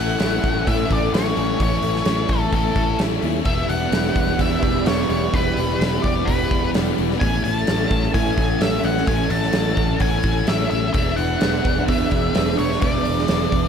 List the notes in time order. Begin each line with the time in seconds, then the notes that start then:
Already playing: A1 A2 E3 A3 C#4 E4 A4 E5 G#5 C#6
0.00 F#5
0.20 A1 E3 A3 C#4 E4, snare, open hi-hat
0.44 A1, kick, open hi-hat
0.66 A2 E3 A3 C#4 E4 E5, kick, open hi-hat
0.91 A1 D5, kick, open hi-hat
1.13 A1 E3 A3 C#4 E4 C#5, snare, open hi-hat
1.37 A1, open hi-hat
1.60 A1 A2 E3 A3 C#4 C#5, kick, open hi-hat
1.64 E4
1.83 A1, open hi-hat
1.96 snare
2.05 A1 E3 A3 C#4, snare, open hi-hat
2.09 E4
2.28 A1 A4, kick, open hi-hat
2.52 A1 A2 E3 A3 C#4 E4 A4, kick, open hi-hat
2.76 A1, kick, open hi-hat
2.99 A1 E3 A3 C#4 E4, snare, open hi-hat
3.22 D#2, open hi-hat
3.45 E1 E2 B2 E3 G3 B3 E4 G4 D5 E5 B5, kick, open hi-hat
3.68 E1 F#5, open hi-hat
3.92 E1 E3 G3 B3 E4, snare, open hi-hat
4.16 E1, kick, open hi-hat
4.39 E2 E3 G3 B3 E4 E5, kick, open hi-hat
4.63 E1, kick, open hi-hat
4.86 E1 E3 G3 B3 C#5, snare, open hi-hat
4.90 E4
5.10 E1 C#5, open hi-hat
5.34 E1 E3 G3 B3 E4 B4 F#5, kick, open hi-hat
5.57 E1, open hi-hat
5.79 E1 E3 G3, snare, open hi-hat
5.84 B3 E4
6.02 E1 D5, kick, open hi-hat
6.25 E1 E3 G3 B4, kick, open hi-hat
6.30 B3 E4
6.51 E1, kick, open hi-hat
6.74 E1 E3 G3 B3 E4, snare, open hi-hat
6.98 E1, open hi-hat
7.11 snare
7.20 A1 A2 E3 A3 C#4 A4 E5 G#5, kick, open hi-hat
7.25 C#4 E4
7.44 A1 G#5, open hi-hat
7.55 A5
7.67 A1 E3 A3 C#4 E4, snare, open hi-hat
7.90 A1, kick, open hi-hat
8.13 A2 E3 A3 C#4 E4 G#5, kick, open hi-hat
8.38 A1, kick, open hi-hat
8.61 A1 E3 A3 C#4 E4 E5, snare, open hi-hat
8.84 A1 F#5, open hi-hat
8.97 snare
9.07 A1 A2 E3 A3 C#4 E4 F#5 G#5, kick, open hi-hat
9.30 A1 A5, open hi-hat
9.42 snare
9.53 A1 E3 A3 C#4, snare, open hi-hat
9.57 E4
9.77 A1, kick, open hi-hat
10.00 A1 A2 E3 A3 C#4 E4 G#5, kick, open hi-hat
10.23 A1, kick, open hi-hat
10.47 A1 E3 A3 C#4 E4 E5, snare, open hi-hat
10.71 A1 E5, open hi-hat
10.94 E1 E2 B2 E3 G#3 B3 D4 G#4 B4 E5, kick, open hi-hat
10.98 E4
11.16 E1 F#5, open hi-hat
11.41 E1 E3 B3 D4 G#4, snare, open hi-hat
11.65 E1, kick, open hi-hat
11.87 E2 E3 B3 D4 G#4 E5, kick, open hi-hat
12.11 E1, kick, open hi-hat
12.34 E1 E3 B3 D4 G#4, snare, open hi-hat
12.58 E1 C#5, open hi-hat
12.72 snare
12.81 E1 E3 B3 D4 G#4 D5, kick, open hi-hat
13.05 E1, open hi-hat
13.18 snare
13.28 E1 E3 B3 D4 G#4, snare, open hi-hat
13.52 E1, kick, open hi-hat